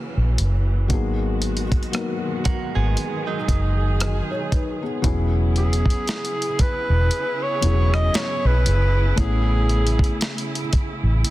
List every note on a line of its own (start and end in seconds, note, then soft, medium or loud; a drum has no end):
0.00 0.86 C#3 medium
0.00 0.86 E3 medium
0.00 0.86 F#3 medium
0.00 0.86 A#3 medium
0.17 0.36 A#1 medium
0.38 0.90 F#1 medium
0.38 closed hi-hat medium
0.88 1.80 G#1 medium
0.88 5.00 B2 medium
0.88 5.00 D#3 medium
0.88 1.61 F#3 medium
0.88 5.00 G#3 medium
0.88 1.62 A#3 medium
0.88 1.62 B3 medium
0.88 1.63 D#4 medium
0.88 2.95 F#4 medium
0.88 kick loud
0.88 closed hi-hat medium
0.93 1.63 G#4 medium
1.42 closed hi-hat medium
1.57 closed hi-hat soft
1.72 kick medium
1.72 closed hi-hat soft
1.83 closed hi-hat soft
1.92 3.34 F#3 medium
1.92 3.34 A#3 medium
1.92 3.35 B3 medium
1.92 3.35 D#4 medium
1.92 cross-stick loud
1.92 closed hi-hat medium
1.96 3.36 A#4 loud
2.45 2.74 A#3 medium
2.45 2.74 F#4 medium
2.45 muted fingered electric bass stroke soft
2.45 kick medium
2.45 closed hi-hat medium
2.75 2.94 G#1 medium
2.75 3.25 B3 medium
2.75 3.24 G#4 medium
2.97 5.02 G#4 medium
2.97 closed hi-hat medium
3.27 4.78 F#3 medium
3.27 4.78 D#4 medium
3.48 4.20 F#1 medium
3.48 kick medium
3.48 closed hi-hat medium
4.00 4.29 F#4 medium
4.00 4.29 D#5 medium
4.00 cross-stick loud
4.00 closed hi-hat medium
4.31 4.51 C#5 medium
4.52 4.81 D#4 medium
4.52 4.81 B4 medium
4.52 kick loud
4.52 closed hi-hat medium
4.82 5.02 B3 soft
4.82 5.05 G#4 medium
5.02 5.94 E1 loud
5.02 11.30 C#3 medium
5.02 6.44 F#3 loud
5.02 6.45 B3 medium
5.02 7.09 B3 medium
5.02 6.45 C#4 medium
5.02 11.30 E4 medium
5.02 6.46 E4 medium
5.02 11.30 G#4 medium
5.02 kick loud
5.02 closed hi-hat medium
5.06 6.46 G#4 loud
5.56 6.63 G#4 medium
5.56 closed hi-hat soft
5.73 closed hi-hat soft
5.86 kick medium
5.90 closed hi-hat soft
6.07 snare loud
6.07 closed hi-hat medium
6.25 closed hi-hat medium
6.42 closed hi-hat medium
6.59 7.44 B4 loud
6.59 muted fingered electric bass stroke soft
6.59 kick loud
6.59 closed hi-hat medium
6.90 7.08 E1 medium
7.11 9.16 B3 medium
7.11 closed hi-hat medium
7.43 7.96 C#5 loud
7.61 8.08 E1 loud
7.61 8.65 F#3 medium
7.61 8.66 B3 medium
7.61 8.67 C#4 medium
7.61 8.67 E4 medium
7.61 closed hi-hat medium
7.65 8.68 G#4 medium
7.94 8.18 D#5 loud
7.94 cross-stick loud
8.14 8.48 C#5 loud
8.14 snare loud
8.14 closed hi-hat medium
8.45 8.63 B1 medium
8.45 9.19 B4 loud
8.66 9.11 F#1 medium
8.66 closed hi-hat medium
9.16 10.07 A1 loud
9.16 10.58 A3 medium
9.16 11.22 A3 medium
9.16 10.58 B3 medium
9.16 10.59 C#4 medium
9.16 10.59 E4 medium
9.16 kick loud
9.16 closed hi-hat medium
9.20 10.18 G#4 medium
9.20 10.60 G#4 medium
9.69 closed hi-hat soft
9.87 closed hi-hat soft
9.99 kick loud
10.04 closed hi-hat soft
10.21 snare loud
10.21 closed hi-hat medium
10.38 closed hi-hat medium
10.55 closed hi-hat medium
10.73 muted fingered electric bass stroke medium
10.73 kick loud
10.73 closed hi-hat medium
11.03 11.22 A1 medium
11.24 11.30 B3 medium
11.24 closed hi-hat medium